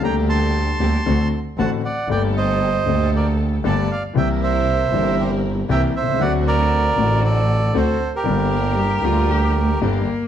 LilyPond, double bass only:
\new Staff \with { instrumentName = "Double bass" } { \clef bass \time 4/4 \key g \minor \tempo 4 = 116 d,4. d,8 d,8 r8 a,,8 r8 | g,,4. d,4. g,,8 r8 | c,4. g,,4. c,8 c,8 | d,4. a,,4. d,8 r8 |
g,,4. d,4. g,,8 r8 | }